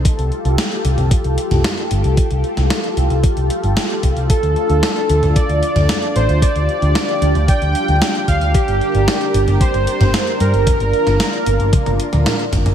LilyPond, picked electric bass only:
\new Staff \with { instrumentName = "Picked electric bass" } { \clef bass \time 4/4 \key d \phrygian \tempo 4 = 113 r16 c,16 r16 c,16 r8 c,16 c,16 r16 c,16 r16 c,16 r8 g,,16 c,16 | r16 c,16 r16 c,16 r8 c,16 c,16 r16 c,16 r16 g,,16 r8 c,16 c,16 | r16 d,16 r16 d,16 r8 d,16 d,16 r16 d,16 r16 d,16 r8 a,,16 d,16 | r16 d,16 r16 d,16 r8 d,16 d,16 r16 d,16 r16 d,16 r8 d,16 d,16 |
r16 g,,16 r16 g,,16 r8 g,,16 g,,16 r16 g,,16 r16 g,,16 r8 g,16 g,,16 | r16 g,,16 r16 g,,16 r8 g,,16 g,,16 r16 g,,16 r16 d,16 r8 g,,16 g,,16 | }